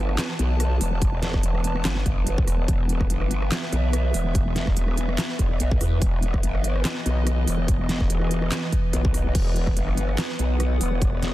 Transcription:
Already playing: wobble bass G1, ambient pad E3 B3 B4 A5
0.09 cross-stick
0.18 snare, clap, closed hi-hat
0.39 wobble bass B1, closed hi-hat
0.60 cross-stick, closed hi-hat
0.81 wobble bass E1, open hi-hat
1.02 kick, closed hi-hat
1.23 snare, closed hi-hat
1.34 kick, cross-stick
1.43 wobble bass E1, closed hi-hat
1.55 cross-stick
1.64 closed hi-hat
1.76 cross-stick
1.85 wobble bass G1, snare, clap, closed hi-hat
2.06 wobble bass G1, kick, closed hi-hat
2.27 closed hi-hat
2.38 kick
2.47 wobble bass E1, cross-stick, open hi-hat
2.68 wobble bass E1, ambient pad E5, kick, closed hi-hat
2.89 closed hi-hat
3.01 kick, cross-stick
3.10 wobble bass G1, closed hi-hat
3.21 cross-stick
3.31 closed hi-hat
3.42 cross-stick
3.52 snare, clap, closed hi-hat
3.72 wobble bass B1, closed hi-hat
3.93 cross-stick, closed hi-hat
4.14 wobble bass E1, open hi-hat
4.35 kick, closed hi-hat
4.56 snare, closed hi-hat
4.67 kick, cross-stick
4.77 wobble bass E1, closed hi-hat
4.88 cross-stick
4.97 closed hi-hat
5.09 cross-stick
5.18 snare, clap, closed hi-hat
5.39 wobble bass E1, kick, closed hi-hat
5.60 wobble bass B1, closed hi-hat
5.71 kick
5.81 wobble bass E2, cross-stick, open hi-hat
6.02 wobble bass E1, ambient pad D#5, kick, closed hi-hat
6.22 closed hi-hat
6.34 kick, cross-stick
6.43 wobble bass G1, closed hi-hat
6.55 cross-stick
6.64 closed hi-hat
6.76 cross-stick
6.85 snare, clap, closed hi-hat
7.06 wobble bass B1, closed hi-hat
7.27 cross-stick, closed hi-hat
7.47 wobble bass E1, open hi-hat
7.68 kick, closed hi-hat
7.89 snare, closed hi-hat
8.01 kick, cross-stick
8.10 wobble bass E1, closed hi-hat
8.21 cross-stick
8.31 closed hi-hat
8.42 cross-stick
8.52 snare, clap, closed hi-hat
8.72 kick, closed hi-hat
8.93 wobble bass B1, closed hi-hat
9.05 kick
9.14 cross-stick, open hi-hat
9.26 wobble bass B1
9.35 wobble bass E1, ambient pad F#5, kick, closed hi-hat, crash
9.56 closed hi-hat
9.67 kick, cross-stick
9.77 wobble bass G1, closed hi-hat
9.88 cross-stick
9.97 closed hi-hat
10.09 cross-stick
10.18 snare, clap, closed hi-hat
10.39 wobble bass B1, closed hi-hat
10.60 cross-stick, closed hi-hat
10.81 wobble bass E1, open hi-hat
11.02 kick, closed hi-hat
11.23 snare, closed hi-hat

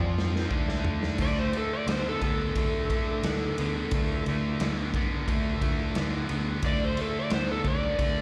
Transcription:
Already playing: fingered electric bass F2, overdriven electric guitar F3 C4 F4, tonewheel organ C4 F4 C5 F5, electric slide guitar D5
0.00 mid tom
0.16 tonewheel organ C4 F4 C5 F5, snare
0.36 snare
0.48 fingered electric bass D2, overdriven electric guitar D3 A3 D4, tonewheel organ D4 F4 A4 D5, kick
0.68 snare
0.85 floor tom
1.03 snare
1.18 fingered electric bass D2, overdriven electric guitar D3 A3, tonewheel organ E4 F4 A4, kick, crash
1.22 electric slide guitar D5
1.39 electric slide guitar C5
1.53 overdriven electric guitar D3 A3, ride
1.57 electric slide guitar A4
1.73 electric slide guitar D5
1.86 fingered electric bass D2, overdriven electric guitar D3 B3, electric slide guitar C5, snare, ride
2.09 electric slide guitar A4
2.21 fingered electric bass D2, overdriven electric guitar D3 B3, electric slide guitar A4, kick, ride
2.55 fingered electric bass D2, overdriven electric guitar D3 A3, kick, ride
2.90 overdriven electric guitar D3 A3, tonewheel organ E4 F4 A4 D5, kick, ride
3.23 fingered electric bass D2, overdriven electric guitar D3 B3, snare, ride
3.58 fingered electric bass D2, overdriven electric guitar D3 B3, ride
3.90 fingered electric bass D2, overdriven electric guitar D3 A3, tonewheel organ E4 F4 A4 D5, kick, ride
4.26 fingered electric bass D2, overdriven electric guitar D3 A3, ride
4.60 fingered electric bass D2, overdriven electric guitar D3 B3, snare, ride
4.94 overdriven electric guitar D3 B3, kick, ride
5.27 fingered electric bass D2, overdriven electric guitar D3 A3, kick, ride
5.61 fingered electric bass D2, overdriven electric guitar D3 A3, tonewheel organ E4 F4 A4 D5, kick, ride
5.95 fingered electric bass D2, overdriven electric guitar D3 B3, snare, ride
6.29 fingered electric bass D2, overdriven electric guitar D3 B3, ride
6.61 fingered electric bass D2, overdriven electric guitar D3 A3, tonewheel organ E4 F4 A4 D5, kick, ride
6.66 electric slide guitar D5
6.85 electric slide guitar C5
6.97 overdriven electric guitar D3 A3, ride
7.01 electric slide guitar A4
7.19 electric slide guitar D5
7.30 fingered electric bass D2, overdriven electric guitar D3 B3, electric slide guitar C5, snare, ride
7.51 electric slide guitar A4
7.64 fingered electric bass D2, overdriven electric guitar D3 B3, electric slide guitar D5, kick, ride
7.98 fingered electric bass D2, overdriven electric guitar D3 A3, kick, ride

